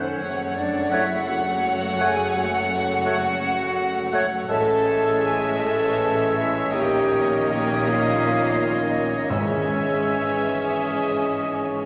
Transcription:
0.00 0.16 F#1 soft
0.00 0.17 F#2 medium
0.00 0.20 D#3 medium
0.00 0.16 A3 medium
0.00 0.57 C#4 loud
0.00 0.17 C5 medium
0.00 0.55 C#5 medium
0.00 0.17 F#5 medium
0.20 4.46 F#1 medium
0.20 4.46 F#2 medium
0.20 4.32 C#3 medium
0.20 4.46 A3 medium
0.20 4.32 A3 medium
0.20 4.46 C#5 medium
0.20 4.46 F#5 medium
0.56 0.92 D4 loud
0.56 0.92 D5 medium
0.91 1.05 A3 medium
0.91 1.29 E4 loud
0.91 1.05 C#5 medium
0.91 1.27 E5 medium
0.91 1.04 F#5 medium
1.27 2.01 F#4 loud
1.27 1.99 F#5 loud
1.98 2.13 A3 medium
1.98 2.36 G#4 loud
1.98 2.13 C#5 medium
1.98 2.12 F#5 medium
1.98 2.35 G#5 loud
2.34 4.33 F#4 loud
2.34 4.23 F#5 loud
3.06 3.18 A3 medium
3.06 3.18 C#5 medium
3.06 3.18 F#5 medium
4.12 4.26 A3 medium
4.12 4.27 C#5 medium
4.12 4.25 F#5 medium
4.49 6.69 A1 medium
4.49 6.69 A2 medium
4.49 5.54 E3 medium
4.49 5.54 G#3 medium
4.49 6.69 G#3 medium
4.49 5.54 C#4 medium
4.49 5.21 A4 loud
4.49 9.27 C#5 medium
4.49 5.55 C#5 medium
4.49 6.69 E5 medium
4.49 5.54 E5 medium
4.49 5.22 A5 loud
5.23 5.59 G#4 loud
5.23 5.58 G#5 loud
5.57 6.71 E3 medium
5.57 6.74 G#3 medium
5.57 6.71 C#4 medium
5.57 6.35 A4 loud
5.57 6.71 C#5 medium
5.57 6.73 E5 medium
5.57 6.35 A5 loud
6.34 6.73 E4 loud
6.34 6.73 E5 medium
6.71 9.27 A#1 medium
6.71 9.27 A#2 medium
6.71 9.31 D#3 medium
6.71 9.27 A#3 medium
6.71 9.30 A#3 medium
6.71 9.27 C#4 medium
6.71 7.48 G4 loud
6.71 9.27 C#5 medium
6.71 9.29 D#5 medium
6.71 9.26 D#5 medium
6.71 7.47 G5 medium
7.49 7.89 G4 medium
7.49 7.88 G5 medium
7.87 8.82 F4 loud
7.87 8.78 F5 medium
8.79 9.31 D#4 medium
8.79 9.28 D#5 medium
9.29 11.86 G#1 medium
9.29 10.62 G#2 medium
9.29 11.86 G#2 medium
9.29 11.86 E3 medium
9.29 11.63 G#3 medium
9.29 11.86 C#4 medium
9.29 11.86 G#4 medium
9.29 11.63 C#5 medium
9.29 11.86 C#5 medium
9.29 11.86 E5 medium
9.29 10.54 E5 medium
9.29 11.86 G#5 medium
10.66 11.57 D#5 medium
11.56 11.86 C#5 medium

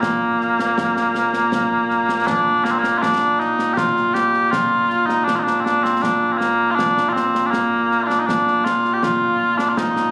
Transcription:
0.00 10.11 A#2 medium
0.00 2.64 A#3 medium
0.00 concert bass drum medium
0.00 snare loud
0.41 snare soft
0.59 snare medium
0.78 concert bass drum medium
0.78 snare loud
0.97 snare medium
1.15 snare medium
1.33 snare medium
1.52 concert bass drum medium
1.52 snare medium
1.90 snare soft
2.09 snare medium
2.27 2.64 D4 loud
2.27 concert bass drum medium
2.27 snare loud
2.64 2.71 A#3 loud
2.64 snare medium
2.71 2.79 C4 medium
2.79 2.98 A#3 loud
2.84 snare medium
2.98 3.40 D4 loud
2.98 3.02 F4 loud
3.03 concert bass drum medium
3.03 snare medium
3.40 3.73 D#4 loud
3.40 snare soft
3.59 snare medium
3.73 4.14 F4 loud
3.73 3.77 G4 loud
3.73 concert bass drum medium
3.73 snare loud
3.97 snare soft
4.14 4.51 G4 loud
4.14 snare medium
4.33 snare soft
4.51 5.06 F4 loud
4.51 concert bass drum medium
4.51 snare medium
4.90 snare soft
5.06 5.24 D#4 loud
5.06 snare medium
5.24 5.36 D4 loud
5.24 concert bass drum soft
5.24 snare medium
5.36 5.44 D#4 medium
5.36 5.39 F4 medium
5.44 5.60 D4 medium
5.44 snare medium
5.60 5.64 C4 medium
5.64 5.83 D4 loud
5.64 snare medium
5.83 6.02 C4 loud
5.83 snare medium
6.02 6.32 D4 medium
6.02 concert bass drum medium
6.02 snare medium
6.32 6.38 C4 medium
6.38 6.71 A#3 medium
6.38 snare medium
6.71 6.75 F4 loud
6.75 7.09 D4 loud
6.75 concert bass drum medium
6.75 snare medium
6.97 snare medium
7.09 7.46 C4 loud
7.09 7.13 F4 loud
7.16 snare medium
7.35 snare medium
7.46 7.51 D4 medium
7.51 8.03 A#3 medium
7.51 concert bass drum soft
7.51 snare medium
7.91 snare soft
8.03 8.19 D4 loud
8.03 8.07 F4 loud
8.10 snare medium
8.19 8.27 D#4 medium
8.27 8.65 D4 loud
8.27 concert bass drum medium
8.27 snare medium
8.48 snare soft
8.65 8.93 F4 loud
8.65 snare medium
8.85 snare soft
8.93 9.03 G4 medium
9.03 9.58 F4 loud
9.03 concert bass drum medium
9.03 snare loud
9.58 9.69 D4 loud
9.58 snare medium
9.69 9.77 F4 medium
9.77 10.11 D#4 medium
9.77 concert bass drum medium
9.77 snare loud
9.96 snare medium

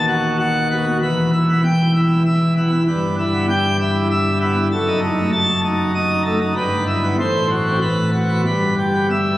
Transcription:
0.00 0.98 D#1 medium
0.00 0.98 D#2 medium
0.08 0.36 F#4 medium
0.39 0.68 F#5 medium
0.70 0.85 B3 medium
0.70 0.97 F#4 medium
1.02 2.83 E1 medium
1.02 2.83 E2 medium
1.02 1.30 B4 medium
1.33 1.61 E4 medium
1.49 1.63 B3 medium
1.64 1.92 G5 loud
1.95 2.23 E4 medium
2.26 2.53 E5 medium
2.57 2.71 B3 medium
2.57 2.83 E4 medium
2.87 4.68 G1 loud
2.87 4.68 G2 medium
2.87 3.15 B4 medium
3.18 3.46 E4 medium
3.33 3.47 B3 medium
3.50 3.77 G5 loud
3.80 4.08 E4 medium
4.11 4.38 E5 medium
4.41 4.55 B3 medium
4.41 4.67 E4 medium
4.71 6.52 F#1 loud
4.71 6.52 F#2 loud
4.71 4.99 A4 medium
4.87 5.00 D#4 medium
5.02 5.30 D#4 medium
5.18 5.32 A3 medium
5.32 5.60 A5 loud
5.63 5.91 D#4 medium
5.94 6.22 D#5 medium
6.09 6.23 D#4 medium
6.25 6.39 A3 medium
6.25 6.39 D#4 medium
6.41 6.54 D#4 medium
6.56 7.17 G1 medium
6.56 7.17 G2 medium
6.56 6.84 B4 loud
6.87 7.14 E4 medium
7.03 7.16 B3 medium
7.19 7.80 A1 medium
7.19 7.80 A2 medium
7.19 7.47 C5 medium
7.50 7.77 F#4 medium
7.66 7.79 C4 medium
7.82 8.44 A1 medium
7.82 8.44 A2 medium
7.82 8.10 B4 medium
8.13 8.41 F#4 medium
8.29 8.43 B3 medium
8.46 9.38 G1 medium
8.46 9.38 G2 medium
8.46 8.75 B4 medium
8.78 9.07 G4 medium
8.94 9.08 B3 medium
9.10 9.38 E5 medium

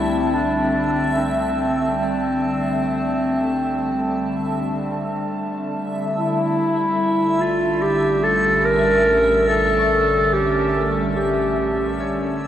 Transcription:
0.00 6.12 C2 medium
0.00 6.16 D3 medium
0.00 12.47 G3 medium
0.00 6.16 A3 medium
0.00 6.16 C4 medium
0.00 0.35 E4 medium
0.00 6.15 E5 medium
0.00 12.47 A5 medium
0.34 1.19 D4 medium
1.17 5.34 C4 medium
6.15 12.47 A1 medium
6.15 12.47 D3 medium
6.15 12.47 A3 medium
6.15 7.41 E4 medium
6.15 12.47 E5 medium
7.05 12.47 C#4 medium
7.40 7.84 F4 medium
7.82 8.25 G4 medium
8.23 8.66 A4 loud
8.65 9.48 A#4 loud
9.48 10.34 A4 loud
9.79 10.79 C#6 soft
10.33 10.89 G4 medium
10.63 12.47 E5 soft
11.15 11.95 G4 medium
12.00 12.47 C#5 soft

